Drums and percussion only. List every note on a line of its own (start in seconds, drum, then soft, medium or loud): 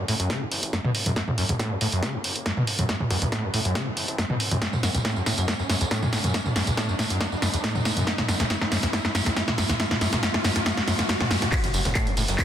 0.08 open hi-hat loud
0.20 closed hi-hat medium
0.30 kick loud
0.30 snare medium
0.30 closed hi-hat medium
0.52 open hi-hat loud
0.63 closed hi-hat medium
0.73 kick loud
0.73 snare medium
0.73 closed hi-hat medium
0.84 mid tom medium
0.95 open hi-hat loud
1.06 closed hi-hat medium
1.06 mid tom loud
1.16 kick loud
1.16 snare medium
1.16 closed hi-hat medium
1.28 mid tom medium
1.38 open hi-hat loud
1.49 closed hi-hat medium
1.49 mid tom medium
1.59 kick loud
1.59 snare medium
1.59 closed hi-hat medium
1.81 open hi-hat loud
1.92 closed hi-hat medium
2.03 kick loud
2.03 snare medium
2.03 closed hi-hat medium
2.24 open hi-hat loud
2.36 closed hi-hat medium
2.46 kick loud
2.46 snare medium
2.46 closed hi-hat medium
2.57 mid tom loud
2.67 open hi-hat loud
2.79 closed hi-hat medium
2.79 mid tom loud
2.89 kick loud
2.89 snare medium
2.89 closed hi-hat medium
3.00 mid tom medium
3.10 kick medium
3.10 open hi-hat loud
3.22 closed hi-hat medium
3.22 mid tom medium
3.32 kick loud
3.32 snare medium
3.32 closed hi-hat medium
3.54 open hi-hat loud
3.65 closed hi-hat medium
3.75 kick loud
3.75 snare medium
3.75 closed hi-hat medium
3.97 open hi-hat loud
4.08 closed hi-hat medium
4.18 kick loud
4.18 snare medium
4.18 closed hi-hat medium
4.30 mid tom loud
4.40 open hi-hat loud
4.51 closed hi-hat medium
4.51 mid tom loud
4.62 kick loud
4.62 snare medium
4.62 closed hi-hat medium
4.62 tambourine soft
4.73 mid tom loud
4.73 tambourine soft
4.83 snare medium
4.83 open hi-hat loud
4.83 tambourine medium
4.95 closed hi-hat medium
4.95 mid tom loud
4.95 tambourine soft
5.05 kick loud
5.05 snare medium
5.05 closed hi-hat medium
5.05 tambourine soft
5.16 tambourine soft
5.26 snare medium
5.26 open hi-hat loud
5.26 tambourine medium
5.38 closed hi-hat medium
5.38 tambourine soft
5.48 kick loud
5.48 snare medium
5.48 closed hi-hat medium
5.48 tambourine soft
5.59 tambourine soft
5.70 snare medium
5.70 open hi-hat loud
5.70 tambourine medium
5.81 closed hi-hat medium
5.81 tambourine soft
5.91 kick loud
5.91 snare medium
5.91 closed hi-hat medium
5.91 tambourine soft
6.02 mid tom loud
6.02 tambourine soft
6.13 snare medium
6.13 open hi-hat loud
6.13 tambourine medium
6.24 closed hi-hat medium
6.24 mid tom loud
6.24 tambourine soft
6.34 kick loud
6.34 snare medium
6.34 closed hi-hat medium
6.34 tambourine soft
6.46 mid tom medium
6.46 tambourine soft
6.56 kick medium
6.56 snare medium
6.56 open hi-hat loud
6.56 tambourine medium
6.67 closed hi-hat medium
6.67 mid tom loud
6.67 tambourine soft
6.77 kick loud
6.77 snare medium
6.77 closed hi-hat medium
6.77 tambourine soft
6.89 tambourine soft
6.99 snare medium
6.99 open hi-hat loud
6.99 tambourine medium
7.10 closed hi-hat medium
7.10 tambourine soft
7.21 kick loud
7.21 snare medium
7.21 closed hi-hat medium
7.21 tambourine soft
7.32 tambourine soft
7.42 snare medium
7.42 open hi-hat loud
7.42 tambourine medium
7.54 closed hi-hat medium
7.54 tambourine soft
7.64 kick loud
7.64 snare medium
7.64 closed hi-hat medium
7.64 tambourine soft
7.75 mid tom medium
7.75 tambourine soft
7.85 snare medium
7.85 open hi-hat loud
7.85 tambourine medium
7.97 closed hi-hat medium
7.97 mid tom loud
7.97 tambourine soft
8.07 kick loud
8.07 snare loud
8.07 closed hi-hat medium
8.07 tambourine soft
8.18 snare medium
8.18 mid tom medium
8.18 tambourine soft
8.29 snare medium
8.29 open hi-hat medium
8.29 tambourine medium
8.40 snare medium
8.40 closed hi-hat medium
8.40 mid tom medium
8.50 kick loud
8.50 snare medium
8.50 closed hi-hat medium
8.50 tambourine soft
8.61 snare medium
8.61 tambourine soft
8.72 snare medium
8.72 open hi-hat loud
8.72 tambourine medium
8.83 snare medium
8.83 closed hi-hat medium
8.83 tambourine soft
8.93 kick loud
8.93 snare loud
8.93 closed hi-hat medium
8.93 tambourine soft
9.05 snare medium
9.15 snare medium
9.15 open hi-hat loud
9.15 tambourine medium
9.26 snare medium
9.26 closed hi-hat medium
9.36 kick loud
9.36 snare loud
9.36 closed hi-hat medium
9.36 tambourine soft
9.48 snare medium
9.48 mid tom medium
9.48 tambourine soft
9.58 snare loud
9.58 open hi-hat loud
9.58 tambourine medium
9.69 snare medium
9.69 closed hi-hat medium
9.69 mid tom medium
9.69 tambourine soft
9.80 kick loud
9.80 snare loud
9.80 closed hi-hat medium
9.80 tambourine soft
9.91 snare medium
9.91 mid tom medium
9.91 tambourine soft
10.01 kick medium
10.01 snare loud
10.01 open hi-hat loud
10.01 tambourine medium
10.13 snare medium
10.13 closed hi-hat medium
10.13 mid tom medium
10.13 tambourine soft
10.23 kick loud
10.23 snare loud
10.23 closed hi-hat medium
10.23 tambourine soft
10.34 snare loud
10.34 tambourine soft
10.44 snare loud
10.44 open hi-hat loud
10.44 tambourine medium
10.56 snare loud
10.56 closed hi-hat medium
10.66 kick loud
10.66 snare loud
10.66 closed hi-hat medium
10.66 tambourine soft
10.77 snare medium
10.77 tambourine soft
10.88 snare loud
10.88 open hi-hat loud
10.88 tambourine medium
10.99 snare loud
10.99 closed hi-hat medium
10.99 tambourine soft
11.09 kick loud
11.09 snare loud
11.09 closed hi-hat medium
11.09 tambourine soft
11.21 snare loud
11.21 mid tom medium
11.21 tambourine soft
11.31 snare loud
11.31 open hi-hat loud
11.31 tambourine medium
11.42 snare loud
11.42 closed hi-hat medium
11.42 mid tom medium
11.42 tambourine soft
11.52 kick loud
11.52 clap loud
11.52 closed hi-hat medium
11.52 crash loud
11.52 ride medium
11.52 tambourine soft
11.64 snare medium
11.64 closed hi-hat medium
11.64 mid tom medium
11.64 ride medium
11.64 tambourine soft
11.74 closed hi-hat medium
11.74 open hi-hat loud
11.74 ride medium
11.74 tambourine medium
11.85 snare soft
11.85 closed hi-hat medium
11.85 mid tom medium
11.85 ride medium
11.85 tambourine soft
11.95 kick loud
11.95 snare loud
11.95 clap loud
11.95 closed hi-hat medium
11.95 ride medium
11.95 tambourine soft
12.07 closed hi-hat medium
12.07 ride medium
12.07 tambourine soft
12.17 closed hi-hat medium
12.17 open hi-hat loud
12.17 ride medium
12.17 tambourine medium
12.28 snare medium
12.28 closed hi-hat medium
12.28 ride medium
12.28 tambourine soft
12.39 kick loud
12.39 clap loud
12.39 closed hi-hat medium
12.39 closed hi-hat loud
12.39 ride medium
12.39 tambourine soft